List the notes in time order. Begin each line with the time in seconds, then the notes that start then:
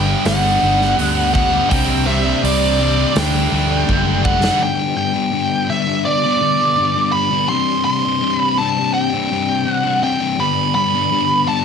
Already playing: G1 G2 D3 G3 B3 G4 D5 G5
0.07 G3 B3 D4
0.24 G1 G2 D3 G3 F#5, snare, open hi-hat
0.42 G3 B3 D4
0.60 G1 D3 G3 B3 D4
0.80 G3 B3 D4, snare
0.96 D2 G2 D3 G3 B3 D4, open hi-hat
1.14 G3 B3 D4
1.32 D3 G3 B3 D4 F#5, kick
1.50 G3 B3 D4
1.69 C2 C3 G3 C4 D4 G5, kick, open hi-hat
1.89 G3 C4 D4
2.05 C3 G3 C4 D4 E5
2.23 G3 C4 D4
2.42 C2 C3 G3 C4 D4 D5, open hi-hat
2.79 C3 G3 C4 D4
2.97 G3 C4 D4
3.14 D2 D3 G3 A3 D4 G4 A4 G5, snare, open hi-hat
3.32 G3 A3 D4
3.50 D2 D3 G3 A3 D4
3.69 G3 A3 D4
3.87 F#1 D3 G3 A3 D4, kick
4.06 G3 A3 D4
4.24 D3 G3 A3 D4 F#5, kick
4.42 G3 A3 D4, snare
4.60 G2 D3 G3 B3 D4 G4 D5 G5
4.96 D3 G3 B3 D4 G5
5.13 G3 B3 D4
5.32 G2 D3 G3 B3 D4
5.69 D3 G3 B3 D4 E5
5.86 G3 B3 D4
6.05 D5
6.23 G3 B3 D4
6.40 D3 G3 B3 D4
6.77 G2 D3 G3 B3 D4
6.95 G3 B3 D4
7.12 D3 G3 B3 D4 B5
7.31 G3 B3 D4
7.49 C3 G3 C4 D4 C6
7.85 C3 G3 C4 D4 C6
8.04 G3 C4 D4
8.21 C3 G3 C4 D4
8.37 B5
8.58 C3 G3 C4 D4 A5
8.77 G3 C4 D4
8.94 G5
9.13 G3 C4 D4
9.30 C3 G3 C4 D4
9.66 C3 G3 C4 D4 F#5
9.83 G3 C4 D4
10.02 C3 G3 C4 D4 G5
10.20 G3 C4 D4
10.37 G2 D3 G3 B3 D4 B5
10.75 D3 G3 B3 D4 B5
10.93 G3 B3 D4
11.10 G2 D3 G3 B3 D4
11.47 D3 G3 B3 D4 A5